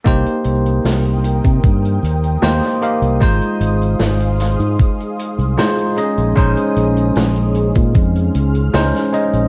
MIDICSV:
0, 0, Header, 1, 5, 480
1, 0, Start_track
1, 0, Tempo, 789474
1, 36, Time_signature, 4, 2, 24, 8
1, 5764, End_track
2, 0, Start_track
2, 0, Title_t, "Analog synth pad"
2, 0, Program_c, 0, 89
2, 39, Note_on_c, 0, 70, 75
2, 39, Note_on_c, 0, 79, 68
2, 39, Note_on_c, 0, 84, 67
2, 41, Note_on_c, 0, 87, 85
2, 1938, Note_off_c, 0, 70, 0
2, 1938, Note_off_c, 0, 79, 0
2, 1955, Note_on_c, 0, 68, 79
2, 1956, Note_on_c, 0, 77, 72
2, 3614, Note_off_c, 0, 87, 0
2, 3619, Note_off_c, 0, 77, 0
2, 3630, Note_on_c, 0, 87, 86
2, 3635, Note_on_c, 0, 61, 70
2, 4583, Note_off_c, 0, 87, 0
2, 4598, Note_on_c, 0, 89, 90
2, 5764, Note_off_c, 0, 61, 0
2, 5764, Note_off_c, 0, 68, 0
2, 5764, Note_off_c, 0, 84, 0
2, 5764, Note_off_c, 0, 89, 0
2, 5764, End_track
3, 0, Start_track
3, 0, Title_t, "Tine electric piano"
3, 0, Program_c, 1, 4
3, 26, Note_on_c, 1, 58, 94
3, 32, Note_on_c, 1, 63, 92
3, 38, Note_on_c, 1, 67, 89
3, 44, Note_on_c, 1, 72, 105
3, 146, Control_c, 1, 64, 127
3, 1443, Note_off_c, 1, 58, 0
3, 1446, Note_off_c, 1, 63, 0
3, 1449, Note_off_c, 1, 67, 0
3, 1452, Note_off_c, 1, 72, 0
3, 1473, Note_on_c, 1, 58, 95
3, 1476, Note_on_c, 1, 63, 84
3, 1479, Note_on_c, 1, 67, 87
3, 1482, Note_on_c, 1, 72, 104
3, 1686, Note_off_c, 1, 58, 0
3, 1688, Note_off_c, 1, 63, 0
3, 1690, Note_off_c, 1, 67, 0
3, 1691, Note_off_c, 1, 72, 0
3, 1715, Note_on_c, 1, 58, 79
3, 1718, Note_on_c, 1, 63, 71
3, 1721, Note_on_c, 1, 67, 70
3, 1723, Note_on_c, 1, 77, 82
3, 1928, Note_off_c, 1, 58, 0
3, 1929, Note_off_c, 1, 63, 0
3, 1930, Note_off_c, 1, 67, 0
3, 1931, Note_off_c, 1, 77, 0
3, 1947, Note_on_c, 1, 56, 100
3, 1951, Note_on_c, 1, 63, 87
3, 1959, Note_on_c, 1, 65, 88
3, 1963, Control_c, 1, 64, 0
3, 1963, Note_on_c, 1, 72, 106
3, 2074, Control_c, 1, 64, 127
3, 3363, Note_off_c, 1, 56, 0
3, 3365, Note_off_c, 1, 63, 0
3, 3370, Note_off_c, 1, 65, 0
3, 3371, Note_off_c, 1, 72, 0
3, 3389, Note_on_c, 1, 56, 94
3, 3394, Note_on_c, 1, 63, 86
3, 3395, Note_on_c, 1, 65, 84
3, 3398, Note_on_c, 1, 72, 103
3, 3605, Note_off_c, 1, 56, 0
3, 3607, Note_off_c, 1, 63, 0
3, 3607, Note_off_c, 1, 65, 0
3, 3609, Note_off_c, 1, 72, 0
3, 3627, Note_on_c, 1, 56, 77
3, 3631, Note_on_c, 1, 61, 69
3, 3634, Note_on_c, 1, 63, 66
3, 3638, Note_on_c, 1, 75, 86
3, 3643, Control_c, 1, 64, 0
3, 3736, Control_c, 1, 64, 127
3, 3844, Note_off_c, 1, 56, 0
3, 3845, Note_off_c, 1, 61, 0
3, 3847, Note_off_c, 1, 63, 0
3, 3849, Note_off_c, 1, 75, 0
3, 3865, Note_on_c, 1, 56, 98
3, 3868, Note_on_c, 1, 61, 88
3, 3876, Note_on_c, 1, 63, 91
3, 3880, Note_on_c, 1, 72, 104
3, 5282, Note_off_c, 1, 56, 0
3, 5284, Note_off_c, 1, 61, 0
3, 5288, Note_off_c, 1, 63, 0
3, 5290, Note_off_c, 1, 72, 0
3, 5310, Note_on_c, 1, 56, 89
3, 5312, Note_on_c, 1, 61, 82
3, 5316, Note_on_c, 1, 63, 86
3, 5318, Note_on_c, 1, 72, 105
3, 5525, Note_off_c, 1, 56, 0
3, 5526, Note_off_c, 1, 61, 0
3, 5528, Note_off_c, 1, 63, 0
3, 5529, Note_off_c, 1, 72, 0
3, 5550, Note_on_c, 1, 56, 80
3, 5553, Note_on_c, 1, 61, 67
3, 5554, Note_on_c, 1, 63, 69
3, 5558, Note_on_c, 1, 75, 80
3, 5764, Note_off_c, 1, 56, 0
3, 5764, Note_off_c, 1, 61, 0
3, 5764, Note_off_c, 1, 63, 0
3, 5764, Note_off_c, 1, 75, 0
3, 5764, End_track
4, 0, Start_track
4, 0, Title_t, "Fingered electric bass"
4, 0, Program_c, 2, 33
4, 35, Note_on_c, 2, 36, 94
4, 140, Note_off_c, 2, 36, 0
4, 274, Note_on_c, 2, 36, 86
4, 479, Note_off_c, 2, 36, 0
4, 514, Note_on_c, 2, 36, 80
4, 847, Note_off_c, 2, 36, 0
4, 878, Note_on_c, 2, 48, 99
4, 978, Note_off_c, 2, 48, 0
4, 995, Note_on_c, 2, 43, 84
4, 1199, Note_off_c, 2, 43, 0
4, 1234, Note_on_c, 2, 39, 91
4, 1439, Note_off_c, 2, 39, 0
4, 1474, Note_on_c, 2, 39, 94
4, 1579, Note_off_c, 2, 39, 0
4, 1835, Note_on_c, 2, 36, 88
4, 1936, Note_off_c, 2, 36, 0
4, 1954, Note_on_c, 2, 32, 88
4, 2059, Note_off_c, 2, 32, 0
4, 2191, Note_on_c, 2, 32, 92
4, 2397, Note_off_c, 2, 32, 0
4, 2430, Note_on_c, 2, 32, 81
4, 2765, Note_off_c, 2, 32, 0
4, 2794, Note_on_c, 2, 44, 104
4, 2895, Note_off_c, 2, 44, 0
4, 3273, Note_on_c, 2, 36, 86
4, 3375, Note_off_c, 2, 36, 0
4, 3757, Note_on_c, 2, 34, 80
4, 3857, Note_off_c, 2, 34, 0
4, 3873, Note_on_c, 2, 34, 97
4, 3979, Note_off_c, 2, 34, 0
4, 4114, Note_on_c, 2, 34, 90
4, 4319, Note_off_c, 2, 34, 0
4, 4355, Note_on_c, 2, 34, 81
4, 4688, Note_off_c, 2, 34, 0
4, 4717, Note_on_c, 2, 46, 110
4, 4817, Note_off_c, 2, 46, 0
4, 4833, Note_on_c, 2, 41, 88
4, 5038, Note_off_c, 2, 41, 0
4, 5076, Note_on_c, 2, 37, 88
4, 5280, Note_off_c, 2, 37, 0
4, 5312, Note_on_c, 2, 37, 95
4, 5418, Note_off_c, 2, 37, 0
4, 5676, Note_on_c, 2, 34, 87
4, 5764, Note_off_c, 2, 34, 0
4, 5764, End_track
5, 0, Start_track
5, 0, Title_t, "Drums"
5, 35, Note_on_c, 9, 42, 75
5, 36, Note_on_c, 9, 36, 105
5, 96, Note_off_c, 9, 36, 0
5, 96, Note_off_c, 9, 42, 0
5, 160, Note_on_c, 9, 42, 54
5, 220, Note_off_c, 9, 42, 0
5, 269, Note_on_c, 9, 42, 108
5, 330, Note_off_c, 9, 42, 0
5, 400, Note_on_c, 9, 42, 55
5, 461, Note_off_c, 9, 42, 0
5, 519, Note_on_c, 9, 38, 109
5, 519, Note_on_c, 9, 42, 70
5, 580, Note_off_c, 9, 38, 0
5, 580, Note_off_c, 9, 42, 0
5, 638, Note_on_c, 9, 42, 57
5, 699, Note_off_c, 9, 42, 0
5, 754, Note_on_c, 9, 42, 99
5, 814, Note_off_c, 9, 42, 0
5, 878, Note_on_c, 9, 36, 98
5, 884, Note_on_c, 9, 42, 54
5, 939, Note_off_c, 9, 36, 0
5, 945, Note_off_c, 9, 42, 0
5, 996, Note_on_c, 9, 36, 118
5, 996, Note_on_c, 9, 42, 70
5, 1056, Note_off_c, 9, 36, 0
5, 1057, Note_off_c, 9, 42, 0
5, 1124, Note_on_c, 9, 42, 57
5, 1185, Note_off_c, 9, 42, 0
5, 1243, Note_on_c, 9, 42, 101
5, 1304, Note_off_c, 9, 42, 0
5, 1361, Note_on_c, 9, 42, 53
5, 1422, Note_off_c, 9, 42, 0
5, 1474, Note_on_c, 9, 38, 126
5, 1474, Note_on_c, 9, 42, 73
5, 1535, Note_off_c, 9, 38, 0
5, 1535, Note_off_c, 9, 42, 0
5, 1598, Note_on_c, 9, 42, 54
5, 1600, Note_on_c, 9, 38, 32
5, 1659, Note_off_c, 9, 42, 0
5, 1660, Note_off_c, 9, 38, 0
5, 1716, Note_on_c, 9, 42, 97
5, 1777, Note_off_c, 9, 42, 0
5, 1837, Note_on_c, 9, 42, 54
5, 1898, Note_off_c, 9, 42, 0
5, 1955, Note_on_c, 9, 36, 115
5, 1956, Note_on_c, 9, 42, 77
5, 2016, Note_off_c, 9, 36, 0
5, 2017, Note_off_c, 9, 42, 0
5, 2072, Note_on_c, 9, 42, 49
5, 2132, Note_off_c, 9, 42, 0
5, 2193, Note_on_c, 9, 42, 100
5, 2253, Note_off_c, 9, 42, 0
5, 2320, Note_on_c, 9, 42, 52
5, 2381, Note_off_c, 9, 42, 0
5, 2429, Note_on_c, 9, 38, 106
5, 2434, Note_on_c, 9, 42, 80
5, 2490, Note_off_c, 9, 38, 0
5, 2495, Note_off_c, 9, 42, 0
5, 2555, Note_on_c, 9, 42, 64
5, 2616, Note_off_c, 9, 42, 0
5, 2674, Note_on_c, 9, 38, 38
5, 2674, Note_on_c, 9, 42, 104
5, 2734, Note_off_c, 9, 38, 0
5, 2735, Note_off_c, 9, 42, 0
5, 2796, Note_on_c, 9, 42, 53
5, 2857, Note_off_c, 9, 42, 0
5, 2914, Note_on_c, 9, 36, 119
5, 2914, Note_on_c, 9, 42, 73
5, 2975, Note_off_c, 9, 36, 0
5, 2975, Note_off_c, 9, 42, 0
5, 3040, Note_on_c, 9, 42, 54
5, 3101, Note_off_c, 9, 42, 0
5, 3156, Note_on_c, 9, 42, 102
5, 3217, Note_off_c, 9, 42, 0
5, 3276, Note_on_c, 9, 42, 50
5, 3337, Note_off_c, 9, 42, 0
5, 3397, Note_on_c, 9, 38, 127
5, 3397, Note_on_c, 9, 42, 80
5, 3457, Note_off_c, 9, 38, 0
5, 3458, Note_off_c, 9, 42, 0
5, 3517, Note_on_c, 9, 42, 54
5, 3578, Note_off_c, 9, 42, 0
5, 3633, Note_on_c, 9, 42, 93
5, 3694, Note_off_c, 9, 42, 0
5, 3756, Note_on_c, 9, 42, 51
5, 3817, Note_off_c, 9, 42, 0
5, 3874, Note_on_c, 9, 36, 113
5, 3875, Note_on_c, 9, 42, 71
5, 3935, Note_off_c, 9, 36, 0
5, 3936, Note_off_c, 9, 42, 0
5, 3995, Note_on_c, 9, 42, 56
5, 4056, Note_off_c, 9, 42, 0
5, 4114, Note_on_c, 9, 42, 98
5, 4174, Note_off_c, 9, 42, 0
5, 4237, Note_on_c, 9, 42, 59
5, 4297, Note_off_c, 9, 42, 0
5, 4351, Note_on_c, 9, 42, 77
5, 4358, Note_on_c, 9, 38, 105
5, 4412, Note_off_c, 9, 42, 0
5, 4419, Note_off_c, 9, 38, 0
5, 4475, Note_on_c, 9, 42, 57
5, 4535, Note_off_c, 9, 42, 0
5, 4590, Note_on_c, 9, 42, 89
5, 4650, Note_off_c, 9, 42, 0
5, 4713, Note_on_c, 9, 42, 60
5, 4717, Note_on_c, 9, 36, 108
5, 4774, Note_off_c, 9, 42, 0
5, 4778, Note_off_c, 9, 36, 0
5, 4831, Note_on_c, 9, 42, 77
5, 4834, Note_on_c, 9, 36, 123
5, 4892, Note_off_c, 9, 42, 0
5, 4895, Note_off_c, 9, 36, 0
5, 4959, Note_on_c, 9, 42, 60
5, 5019, Note_off_c, 9, 42, 0
5, 5073, Note_on_c, 9, 42, 105
5, 5134, Note_off_c, 9, 42, 0
5, 5195, Note_on_c, 9, 42, 56
5, 5256, Note_off_c, 9, 42, 0
5, 5313, Note_on_c, 9, 38, 127
5, 5319, Note_on_c, 9, 42, 74
5, 5374, Note_off_c, 9, 38, 0
5, 5380, Note_off_c, 9, 42, 0
5, 5439, Note_on_c, 9, 38, 36
5, 5439, Note_on_c, 9, 42, 51
5, 5499, Note_off_c, 9, 42, 0
5, 5500, Note_off_c, 9, 38, 0
5, 5555, Note_on_c, 9, 42, 89
5, 5616, Note_off_c, 9, 42, 0
5, 5675, Note_on_c, 9, 42, 56
5, 5736, Note_off_c, 9, 42, 0
5, 5764, End_track
0, 0, End_of_file